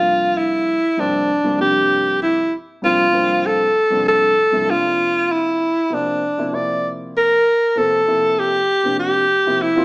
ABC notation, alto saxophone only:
X:1
M:4/4
L:1/8
Q:1/4=97
K:Cmix
V:1 name="Alto saxophone"
F E2 D2 G2 E | z F2 A2 A2 F- | F E2 D2 d z B- | B A2 G2 G2 E |]